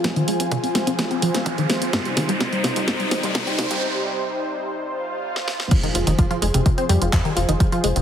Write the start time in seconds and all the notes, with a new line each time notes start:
Already playing: F3 F4 G#4 C5 G#5, riser
0.04 F3, kick, snare, closed hi-hat
0.16 D#3, closed hi-hat
0.28 F1 G#3, open hi-hat
0.40 F1 C4, closed hi-hat
0.51 C2 C3, kick, closed hi-hat
0.63 C4, open hi-hat
0.75 G#3, snare, open hi-hat
0.87 F1 C4, closed hi-hat
0.99 F3, kick, snare, closed hi-hat
1.11 C4, closed hi-hat
1.22 F1 F3, open hi-hat
1.34 F1 C4, snare, closed hi-hat
1.46 F3, kick, closed hi-hat
1.58 D#3, closed hi-hat
1.69 G#3, snare, open hi-hat
1.82 C4, closed hi-hat
1.93 C2 G2 C3 G3 D#4, kick, snare, closed hi-hat
2.05 G3, closed hi-hat
2.17 C2 D#3, snare, open hi-hat
2.29 C2 G3, closed hi-hat
2.40 C2 C3, kick, snare, closed hi-hat
2.52 G3, closed hi-hat
2.64 C2 C3, snare, open hi-hat
2.76 C2 G3, closed hi-hat
2.88 C2 G2, kick, snare, closed hi-hat
3.00 G3, closed hi-hat
3.11 G1 D#3, snare, open hi-hat
3.23 C2 G3, closed hi-hat
3.35 C3, kick, snare, closed hi-hat
3.47 G3, closed hi-hat
3.59 C2 C3, snare, open hi-hat
3.71 C2 G3, closed hi-hat
4.77 swell
5.36 snare
5.48 snare
5.60 snare
5.71 F1 F3 F4 G#4 C5, kick, closed hi-hat, crash, impact
5.83 D#3 D#4, closed hi-hat
5.95 F1 F3 F4, open hi-hat
6.07 F1 D#3 D#4, closed hi-hat
6.18 F1 F3 F4, kick, closed hi-hat
6.31 F3 F4, closed hi-hat
6.42 F1 G#3 G#4, open hi-hat
6.54 F1 C3 C4, closed hi-hat
6.66 F1 C3 C4, kick, closed hi-hat
6.78 C4 C5, closed hi-hat
6.89 F2 G3 G4, open hi-hat
7.01 F1 F3 F4, closed hi-hat
7.13 F2 F3 F4, kick, clap, closed hi-hat
7.25 D#3 D#4, closed hi-hat
7.36 F1 F3 F4, open hi-hat
7.49 F1 D#3 D#4, closed hi-hat
7.60 F1 F3 F4, kick, closed hi-hat
7.72 F3 F4, closed hi-hat
7.84 F1 G#3 G#4, open hi-hat
7.96 F1 C3 C4, closed hi-hat